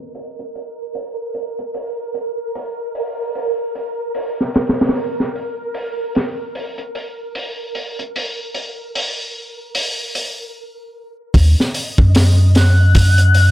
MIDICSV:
0, 0, Header, 1, 5, 480
1, 0, Start_track
1, 0, Key_signature, -6, "minor"
1, 0, Tempo, 800000
1, 1049, Time_signature, 4, 2, 24, 8
1, 8107, End_track
2, 0, Start_track
2, 0, Title_t, "Soft synth lead"
2, 0, Program_c, 0, 80
2, 7538, Note_on_c, 0, 90, 127
2, 8107, Note_off_c, 0, 90, 0
2, 8107, End_track
3, 0, Start_track
3, 0, Title_t, "Synth texture"
3, 0, Program_c, 1, 99
3, 0, Note_on_c, 1, 70, 75
3, 6333, Note_off_c, 1, 70, 0
3, 6811, Note_on_c, 1, 75, 84
3, 8107, Note_off_c, 1, 75, 0
3, 8107, End_track
4, 0, Start_track
4, 0, Title_t, "Sub bass"
4, 0, Program_c, 2, 38
4, 6805, Note_on_c, 2, 39, 100
4, 6931, Note_off_c, 2, 39, 0
4, 7190, Note_on_c, 2, 42, 95
4, 8107, Note_off_c, 2, 42, 0
4, 8107, End_track
5, 0, Start_track
5, 0, Title_t, "Drums"
5, 89, Note_on_c, 9, 46, 77
5, 149, Note_off_c, 9, 46, 0
5, 234, Note_on_c, 9, 42, 39
5, 294, Note_off_c, 9, 42, 0
5, 332, Note_on_c, 9, 46, 59
5, 392, Note_off_c, 9, 46, 0
5, 567, Note_on_c, 9, 46, 78
5, 627, Note_off_c, 9, 46, 0
5, 807, Note_on_c, 9, 46, 54
5, 867, Note_off_c, 9, 46, 0
5, 952, Note_on_c, 9, 42, 36
5, 1012, Note_off_c, 9, 42, 0
5, 1046, Note_on_c, 9, 46, 78
5, 1106, Note_off_c, 9, 46, 0
5, 1285, Note_on_c, 9, 46, 50
5, 1345, Note_off_c, 9, 46, 0
5, 1532, Note_on_c, 9, 46, 81
5, 1592, Note_off_c, 9, 46, 0
5, 1769, Note_on_c, 9, 46, 65
5, 1829, Note_off_c, 9, 46, 0
5, 2011, Note_on_c, 9, 46, 73
5, 2071, Note_off_c, 9, 46, 0
5, 2251, Note_on_c, 9, 46, 62
5, 2311, Note_off_c, 9, 46, 0
5, 2487, Note_on_c, 9, 46, 81
5, 2547, Note_off_c, 9, 46, 0
5, 2643, Note_on_c, 9, 38, 30
5, 2703, Note_off_c, 9, 38, 0
5, 2725, Note_on_c, 9, 46, 61
5, 2734, Note_on_c, 9, 38, 80
5, 2785, Note_off_c, 9, 46, 0
5, 2794, Note_off_c, 9, 38, 0
5, 2801, Note_on_c, 9, 46, 51
5, 2816, Note_on_c, 9, 38, 79
5, 2861, Note_off_c, 9, 46, 0
5, 2875, Note_on_c, 9, 46, 61
5, 2876, Note_off_c, 9, 38, 0
5, 2887, Note_on_c, 9, 38, 82
5, 2922, Note_off_c, 9, 46, 0
5, 2922, Note_on_c, 9, 46, 55
5, 2933, Note_off_c, 9, 38, 0
5, 2933, Note_on_c, 9, 38, 67
5, 2972, Note_off_c, 9, 46, 0
5, 2972, Note_on_c, 9, 46, 88
5, 2993, Note_off_c, 9, 38, 0
5, 3032, Note_off_c, 9, 46, 0
5, 3120, Note_on_c, 9, 38, 35
5, 3180, Note_off_c, 9, 38, 0
5, 3213, Note_on_c, 9, 46, 52
5, 3273, Note_off_c, 9, 46, 0
5, 3446, Note_on_c, 9, 46, 79
5, 3506, Note_off_c, 9, 46, 0
5, 3690, Note_on_c, 9, 46, 56
5, 3698, Note_on_c, 9, 38, 47
5, 3750, Note_off_c, 9, 46, 0
5, 3758, Note_off_c, 9, 38, 0
5, 3931, Note_on_c, 9, 46, 75
5, 3991, Note_off_c, 9, 46, 0
5, 4067, Note_on_c, 9, 42, 42
5, 4127, Note_off_c, 9, 42, 0
5, 4170, Note_on_c, 9, 46, 63
5, 4230, Note_off_c, 9, 46, 0
5, 4410, Note_on_c, 9, 46, 73
5, 4470, Note_off_c, 9, 46, 0
5, 4649, Note_on_c, 9, 46, 56
5, 4709, Note_off_c, 9, 46, 0
5, 4795, Note_on_c, 9, 42, 39
5, 4855, Note_off_c, 9, 42, 0
5, 4894, Note_on_c, 9, 46, 80
5, 4954, Note_off_c, 9, 46, 0
5, 5127, Note_on_c, 9, 46, 61
5, 5187, Note_off_c, 9, 46, 0
5, 5372, Note_on_c, 9, 46, 81
5, 5432, Note_off_c, 9, 46, 0
5, 5849, Note_on_c, 9, 46, 76
5, 5909, Note_off_c, 9, 46, 0
5, 6091, Note_on_c, 9, 46, 60
5, 6151, Note_off_c, 9, 46, 0
5, 6805, Note_on_c, 9, 36, 109
5, 6807, Note_on_c, 9, 46, 82
5, 6865, Note_off_c, 9, 36, 0
5, 6867, Note_off_c, 9, 46, 0
5, 6961, Note_on_c, 9, 38, 41
5, 7021, Note_off_c, 9, 38, 0
5, 7046, Note_on_c, 9, 46, 63
5, 7106, Note_off_c, 9, 46, 0
5, 7189, Note_on_c, 9, 36, 91
5, 7249, Note_off_c, 9, 36, 0
5, 7288, Note_on_c, 9, 46, 96
5, 7295, Note_on_c, 9, 38, 105
5, 7348, Note_off_c, 9, 46, 0
5, 7355, Note_off_c, 9, 38, 0
5, 7530, Note_on_c, 9, 46, 67
5, 7536, Note_on_c, 9, 38, 58
5, 7590, Note_off_c, 9, 46, 0
5, 7596, Note_off_c, 9, 38, 0
5, 7769, Note_on_c, 9, 46, 100
5, 7770, Note_on_c, 9, 36, 99
5, 7829, Note_off_c, 9, 46, 0
5, 7830, Note_off_c, 9, 36, 0
5, 7907, Note_on_c, 9, 42, 42
5, 7967, Note_off_c, 9, 42, 0
5, 8007, Note_on_c, 9, 46, 61
5, 8067, Note_off_c, 9, 46, 0
5, 8107, End_track
0, 0, End_of_file